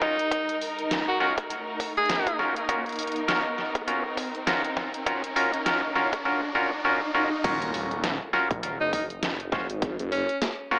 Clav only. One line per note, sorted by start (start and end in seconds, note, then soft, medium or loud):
0.02 0.17 C#4 medium
0.02 0.17 F4 medium
0.02 0.17 F#4 medium
0.02 0.17 A#4 medium
1.20 1.36 C#4 medium
1.20 1.36 F4 medium
1.20 1.36 F#4 medium
1.20 1.36 A#4 medium
2.39 2.55 C#4 medium
2.39 2.55 F4 medium
2.39 2.55 F#4 medium
2.39 2.55 A#4 medium
2.69 2.84 C#4 medium
2.69 2.84 F4 medium
2.69 2.84 F#4 medium
2.69 2.84 A#4 medium
3.28 3.44 C#4 medium
3.28 3.44 F4 medium
3.28 3.44 F#4 medium
3.28 3.44 A#4 medium
3.88 4.03 C#4 medium
3.88 4.03 F4 medium
3.88 4.03 F#4 medium
3.88 4.03 A#4 medium
4.47 4.62 C#4 medium
4.47 4.62 F4 medium
4.47 4.62 F#4 medium
4.47 4.62 A#4 medium
5.06 5.22 C#4 medium
5.06 5.22 F4 medium
5.06 5.22 F#4 medium
5.06 5.22 A#4 medium
5.36 5.51 C#4 medium
5.36 5.51 F4 medium
5.36 5.52 F#4 medium
5.36 5.52 A#4 medium
5.66 5.81 C#4 medium
5.66 5.81 F4 medium
5.66 5.81 F#4 medium
5.66 5.81 A#4 medium
5.95 6.11 C#4 medium
5.95 6.11 F4 medium
5.95 6.11 F#4 medium
5.95 6.11 A#4 medium
6.25 6.41 C#4 medium
6.25 6.41 F4 medium
6.25 6.41 F#4 medium
6.25 6.41 A#4 medium
6.55 6.70 C#4 medium
6.55 6.70 F4 medium
6.55 6.70 F#4 medium
6.55 6.70 A#4 medium
6.85 7.00 C#4 medium
6.85 7.00 F4 medium
6.85 7.00 F#4 medium
6.85 7.00 A#4 loud
7.15 7.30 C#4 medium
7.15 7.30 F4 medium
7.15 7.30 F#4 medium
7.15 7.30 A#4 medium
7.44 8.28 C#4 loud
7.44 8.28 F4 medium
7.44 8.28 F#4 medium
7.44 8.29 A#4 loud
8.33 8.49 C#4 medium
8.33 8.49 F4 medium
8.33 8.49 F#4 medium
8.33 8.49 A#4 medium
9.52 9.67 C#4 medium
9.52 9.67 F4 medium
9.52 9.67 F#4 medium
9.52 9.67 C5 medium
10.71 10.79 C#4 medium
10.71 10.79 F4 medium
10.71 10.79 F#4 medium
10.71 10.79 A#4 medium